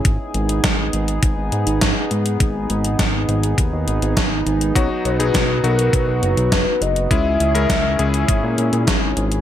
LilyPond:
<<
  \new Staff \with { instrumentName = "Soft synth lead" } { \time 4/4 \key gis \minor \tempo 4 = 102 r1 | r1 | cis''8 b'4 ais'8 b'4. dis''8 | e''2. r4 | }
  \new Staff \with { instrumentName = "Analog synth pad" } { \time 4/4 \key gis \minor << { gis'1~ | gis'1 | fis'1 | gis'1 | } \\ { <b dis'>1~ | <b dis'>1~ | <b dis'>1 | <cis' e'>1 | } >> }
  \new Staff \with { instrumentName = "Electric grand piano" } { \time 4/4 \key gis \minor r1 | r1 | <fis b dis' fis'>8. <fis b dis' gis'>8. <fis b dis' fis'>2~ <fis b dis' fis'>8 | <gis cis' e' gis'>8. <gis cis' e' ais'>8. <gis cis' e' gis'>2~ <gis cis' e' gis'>8 | }
  \new Staff \with { instrumentName = "Analog synth bass" } { \clef bass \time 4/4 \key gis \minor gis,,16 r16 gis,,8 gis,,8 gis,,8 gis,,16 gis,,16 gis,16 gis,,16 gis,16 r16 gis,8 | gis,,8 gis,,8 gis,,8 gis,,8 dis,16 dis,16 gis,,16 gis,,16 gis,,8 gis,,8 | b,,16 r16 b,,8 b,,8 b,,8 b,,16 b,,16 fis,,16 b,,16 fis,,16 r16 fis,,8 | cis,8 cis,8 cis,8 cis,8 gis,,16 ais,16 ais,16 ais,16 gis,,8 gis,,8 | }
  \new DrumStaff \with { instrumentName = "Drums" } \drummode { \time 4/4 <hh bd>8 hh16 hh16 <hh bd sn>8 hh16 hh16 <hh bd>8 hh16 hh16 <hh bd sn>8 hh16 hh16 | <hh bd>8 hh16 hh16 <hh bd sn>8 hh16 hh16 <hh bd>8 hh16 hh16 <hh bd sn>8 hh16 hh16 | <hh bd>8 hh16 hh16 <hh bd sn>8 hh16 hh16 <hh bd>8 hh16 hh16 <hh bd sn>8 hh16 hh16 | <hh bd>8 hh16 hh16 <hh bd sn>8 hh16 hh16 <hh bd>8 hh16 hh16 <hh bd sn>8 hh16 hh16 | }
>>